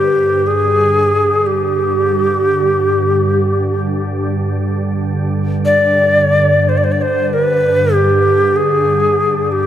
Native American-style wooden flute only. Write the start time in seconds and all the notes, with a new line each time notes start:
Already playing: G4
0.47 G#4
1.47 G4
5.65 D5
6.69 C5
6.78 D5
6.84 C5
6.92 D5
7.02 C5
7.33 B4
7.94 G4
8.56 G#4
9.52 G4